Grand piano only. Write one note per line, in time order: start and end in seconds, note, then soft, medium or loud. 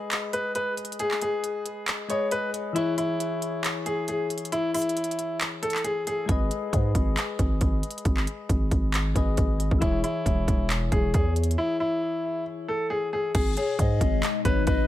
0.33 0.50 B4 medium
0.55 0.72 B4 medium
1.00 1.17 G#4 medium
1.22 1.84 G#4 medium
2.10 2.27 C#5 medium
2.32 2.49 B4 medium
2.75 2.93 E4 medium
2.98 3.60 E4 medium
3.86 4.03 G#4 medium
4.08 4.25 G#4 medium
4.52 4.69 E4 medium
4.74 5.37 E4 medium
5.63 5.80 A4 medium
5.84 6.01 G#4 medium
6.07 6.24 G#4 medium
9.81 9.98 E4 medium
10.04 10.66 E4 medium
10.92 11.09 G#4 medium
11.14 11.31 G#4 medium
11.58 11.75 E4 medium
11.80 12.42 E4 medium
12.68 12.85 A4 medium
12.90 13.07 G#4 medium
13.13 13.30 G#4 medium
13.35 13.52 G#4 medium
13.57 14.19 G#4 medium
14.45 14.62 B4 medium
14.67 14.84 B4 medium